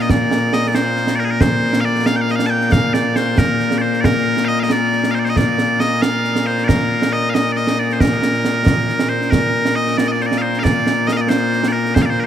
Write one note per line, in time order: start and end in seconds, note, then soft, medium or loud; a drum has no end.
0.00 12.27 A#2 medium
0.00 12.27 A#3 medium
0.00 0.10 D#5 medium
0.10 0.53 D5 loud
0.10 concert bass drum medium
0.10 snare medium
0.31 snare medium
0.53 0.67 D#5 loud
0.53 snare medium
0.67 0.75 D5 medium
0.75 1.16 C5 loud
0.75 snare medium
0.96 snare soft
1.07 snare medium
1.16 1.24 A#4 medium
1.16 1.20 D5 medium
1.24 1.30 G#4 medium
1.30 1.41 A#4 medium
1.41 1.81 C5 loud
1.41 concert bass drum medium
1.41 snare medium
1.73 snare medium
1.81 1.85 F5 loud
1.85 2.06 D5 loud
1.95 snare soft
2.06 2.16 F5 loud
2.06 snare medium
2.16 2.21 G5 medium
2.21 2.31 F5 loud
2.29 2.36 D#5 medium
2.29 snare soft
2.36 2.46 F5 loud
2.36 snare medium
2.46 2.72 G5 loud
2.46 2.50 A5 loud
2.61 snare soft
2.72 2.94 F5 loud
2.72 concert bass drum medium
2.72 snare medium
2.94 3.16 D5 medium
2.94 snare medium
3.16 3.38 C5 loud
3.16 snare medium
3.38 3.78 A#4 medium
3.38 concert bass drum medium
3.38 snare medium
3.60 snare soft
3.71 snare medium
3.78 4.01 C5 medium
3.78 3.81 D5 medium
3.93 snare soft
4.01 4.05 D5 loud
4.01 concert bass drum medium
4.01 snare medium
4.05 4.45 A#4 loud
4.37 snare medium
4.45 4.60 D#5 loud
4.45 4.48 F5 loud
4.60 4.72 D#5 medium
4.60 4.63 F5 medium
4.70 5.11 D5 loud
4.70 snare medium
4.92 snare soft
5.04 snare medium
5.11 5.19 C5 medium
5.11 5.15 F5 medium
5.19 5.25 D5 medium
5.25 5.29 C5 medium
5.25 snare soft
5.29 5.37 D#5 medium
5.36 5.80 D5 loud
5.36 concert bass drum medium
5.36 snare medium
5.58 snare medium
5.80 6.02 D#5 loud
5.80 snare medium
6.02 6.46 F5 loud
6.02 snare medium
6.24 snare soft
6.36 snare medium
6.46 6.64 C5 medium
6.58 snare soft
6.64 7.13 A#4 medium
6.64 6.68 D5 medium
6.69 concert bass drum medium
6.69 snare loud
7.02 snare medium
7.13 7.30 D#5 loud
7.30 7.34 F5 medium
7.34 7.52 D#5 medium
7.34 snare medium
7.52 7.57 D5 medium
7.57 7.79 D#5 medium
7.57 snare soft
7.67 snare medium
7.79 7.93 D5 medium
7.90 8.01 C5 medium
7.90 snare soft
8.00 9.09 A#4 medium
8.00 concert bass drum medium
8.00 snare medium
8.12 snare soft
8.22 snare medium
8.34 snare soft
8.45 snare medium
8.66 concert bass drum medium
8.66 snare loud
8.89 snare soft
8.99 snare medium
9.09 9.31 C5 medium
9.21 snare soft
9.31 9.75 A#4 loud
9.31 concert bass drum medium
9.31 snare medium
9.65 snare medium
9.75 9.97 D#5 loud
9.87 snare soft
9.97 10.08 D5 medium
9.97 snare medium
10.08 10.22 D5 loud
10.08 10.11 D#5 medium
10.21 10.26 C5 medium
10.21 snare soft
10.26 10.38 D5 medium
10.32 snare medium
10.38 10.59 C5 medium
10.38 10.42 F5 medium
10.53 snare soft
10.59 10.64 F5 loud
10.64 11.07 D5 loud
10.64 concert bass drum medium
10.64 snare medium
10.87 snare medium
11.07 11.13 D#5 medium
11.07 snare medium
11.13 11.17 F5 medium
11.17 11.29 D5 medium
11.17 11.21 D#5 loud
11.29 11.68 C5 loud
11.29 snare loud
11.53 snare soft
11.63 snare medium
11.68 11.72 D5 medium
11.72 11.95 A#4 medium
11.85 snare soft
11.95 12.02 C5 loud
11.95 concert bass drum medium
11.95 snare loud
12.02 12.10 D5 medium
12.02 12.06 F5 medium
12.10 12.20 C5 medium
12.20 12.24 A#4 medium